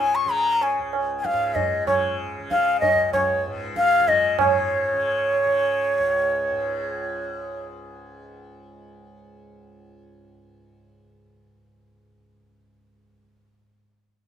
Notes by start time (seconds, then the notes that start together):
Already playing: C#2 G#2 C#3
0.00 G#5
0.15 C#6
0.25 C#3
0.32 A#5
0.61 G#5, tabla na
0.79 C#2
0.93 tabla na
1.19 G#5
1.25 F5, tabla ke
1.33 G#2
1.55 D#5, tabla tin, tabla ge
1.86 C#3 C#5, tabla na, tabla ge
2.39 C#3
2.51 F5, tabla ke
2.80 D#5, tabla tin, tabla ge
2.93 C#2
3.13 C#5, tabla na, tabla ge
3.46 G#2
3.76 F5, tabla ke
4.00 C#3
4.08 D#5, tabla tin, tabla ge
4.39 G#2 C#5, tabla na, tabla ge
4.93 C#3
5.46 C#3
5.99 C#2
6.51 G#2